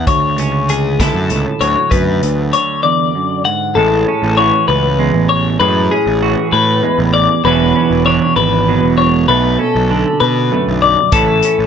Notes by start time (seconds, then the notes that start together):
Already playing: E3 D4
0.07 D2 C#5, kick, closed hi-hat
0.37 C#2 C#4, closed hi-hat
0.69 G#4, closed hi-hat
1.00 E4 A4, kick, snare, closed hi-hat
1.14 F#2
1.30 C#2 A2, closed hi-hat
1.61 D2 F#3 C#5, closed hi-hat
1.91 D2 F#2 B4, kick, closed hi-hat
2.23 D2, closed hi-hat
2.53 D3 C#5, closed hi-hat
2.83 E2 D5
3.15 F#2
3.45 G#2 F#5
3.75 A1 A2 G#3 A4
4.08 C#4
4.23 A1
4.37 E3 F#4 C#5
4.68 C#2 B4
4.98 E2 G#3
5.14 A1
5.29 C#5
5.60 F#2 A2 G#3 B4
5.91 C#4 G#4
6.07 A1
6.22 E3 F#4
6.53 A2 B4
6.82 E2 G#3
6.99 A1
7.14 D5
7.44 E1 E2 E3 F#3 C#4 D4 B4
7.76 C#4
7.91 E1
8.06 E3 D4 C#5
8.36 G#1 B4
8.68 B2 F#3
8.83 E1
8.98 C#5
9.28 B1 B2 A3 B4
9.59 C#4 A4
9.75 B1
9.90 D3 D4
10.20 B2 B4
10.51 F#2 A3
10.68 B1
10.82 D5
11.12 A1 A2 E3 C#4 E4 A4, kick, closed hi-hat
11.43 C#4, closed hi-hat
11.59 A1